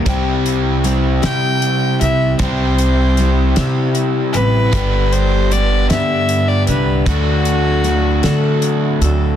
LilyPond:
<<
  \new Staff \with { instrumentName = "Fiddle" } { \time 6/8 \key c \lydian \tempo 4. = 51 r4. g''4 e''8 | c''2 r8 b'8~ | b'8 c''8 d''8 e''8. d''16 b'8 | fis'2 r4 | }
  \new Staff \with { instrumentName = "Steel-string acoustic guitar" } { \time 6/8 \key c \lydian <c g c' e' g'>4 <g c' e' g'>8 <c g c' e' g'>4 <c' e' g'>8 | <c g c' e' g'>4 <g c' e' g'>8 <c g c' e' g'>4 <c' e' g'>8 | <g, d g d' g'>4 <g b d' g'>8 <g, d g b d' g'>4 <g b d' g'>8 | <d a d' fis' a'>4 <a d' fis' a'>8 <d a d' fis' a'>4 <d' fis' a'>8 | }
  \new Staff \with { instrumentName = "Overdriven electric guitar" } { \time 6/8 \key c \lydian <c g c' e' g'>2. | <c g c' e' g'>2. | <g, d g b d' g'>2. | <d fis a d' fis'>2. | }
  \new Staff \with { instrumentName = "Upright bass" } { \clef bass \time 6/8 \key c \lydian c,4. c4 c,8 | c,4. c4 a,,8 | g,,4. g,4 c,8 | d,4. d4 d,8 | }
  \new DrumStaff \with { instrumentName = "Drums" } \drummode { \time 6/8 <hh bd>8 hh8 hh8 <hh sn>8 hh8 hh8 | <hh bd>8 hh8 hh8 <hh sn>8 hh8 hh8 | <hh bd>8 hh8 hh8 <hh sn>8 hh8 hh8 | <hh bd>8 hh8 hh8 <hh sn>8 hh8 hh8 | }
>>